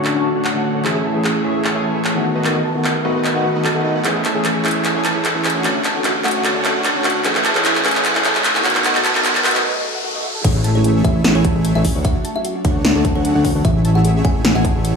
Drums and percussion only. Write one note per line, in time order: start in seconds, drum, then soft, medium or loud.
0.05 clap medium
0.45 clap medium
0.85 clap medium
1.24 clap medium
1.65 clap medium
2.05 clap medium
2.44 clap medium
2.85 clap medium
3.25 clap medium
3.65 clap medium
4.05 clap medium
4.05 closed hi-hat medium
4.25 clap medium
4.25 closed hi-hat medium
4.45 clap medium
4.45 closed hi-hat medium
4.65 clap medium
4.65 closed hi-hat soft
4.68 closed hi-hat medium
4.71 closed hi-hat medium
4.85 clap medium
4.85 closed hi-hat medium
5.05 clap medium
5.05 closed hi-hat medium
5.25 clap medium
5.25 closed hi-hat medium
5.45 clap medium
5.45 closed hi-hat soft
5.50 closed hi-hat medium
5.64 clap medium
5.64 closed hi-hat medium
5.84 clap medium
5.84 closed hi-hat medium
6.04 clap medium
6.04 closed hi-hat medium
6.24 clap medium
6.24 closed hi-hat soft
6.28 closed hi-hat medium
6.31 closed hi-hat medium
6.45 clap medium
6.45 closed hi-hat medium
6.65 clap medium
6.65 closed hi-hat medium
6.84 clap medium
6.84 closed hi-hat medium
7.04 clap medium
7.04 closed hi-hat soft
7.10 closed hi-hat medium
7.25 clap medium
7.25 closed hi-hat medium
7.35 clap medium
7.45 clap medium
7.45 closed hi-hat medium
7.55 clap medium
7.65 clap loud
7.65 closed hi-hat medium
7.75 clap medium
7.85 clap medium
7.85 closed hi-hat medium
7.88 closed hi-hat medium
7.91 clap medium
7.91 closed hi-hat medium
8.05 clap loud
8.05 closed hi-hat medium
8.15 clap medium
8.25 clap loud
8.25 closed hi-hat medium
8.35 clap medium
8.44 clap loud
8.44 closed hi-hat medium
8.55 clap medium
8.65 clap loud
8.65 closed hi-hat medium
8.70 closed hi-hat medium
8.75 clap medium
8.84 clap loud
8.84 closed hi-hat medium
8.95 clap medium
9.05 clap loud
9.05 closed hi-hat medium
9.15 clap medium
9.25 clap loud
9.25 closed hi-hat medium
9.35 clap medium
9.44 clap loud
9.44 closed hi-hat medium
9.48 closed hi-hat medium
9.51 closed hi-hat medium
9.55 clap medium
10.44 kick loud
10.44 closed hi-hat medium
10.44 crash loud
10.64 closed hi-hat medium
10.84 closed hi-hat medium
11.05 kick loud
11.05 closed hi-hat medium
11.24 snare loud
11.24 closed hi-hat medium
11.45 kick loud
11.45 closed hi-hat medium
11.65 closed hi-hat medium
11.85 kick medium
11.85 open hi-hat loud
12.05 kick loud
12.05 closed hi-hat medium
12.25 closed hi-hat medium
12.45 closed hi-hat medium
12.65 kick loud
12.65 closed hi-hat medium
12.85 snare loud
12.85 closed hi-hat medium
13.05 kick loud
13.05 closed hi-hat medium
13.25 closed hi-hat medium
13.45 kick medium
13.45 open hi-hat medium
13.65 kick loud
13.65 closed hi-hat medium
13.85 closed hi-hat medium
14.05 closed hi-hat medium
14.25 kick loud
14.25 closed hi-hat medium
14.45 snare loud
14.45 closed hi-hat medium
14.65 kick loud
14.65 closed hi-hat medium
14.85 closed hi-hat medium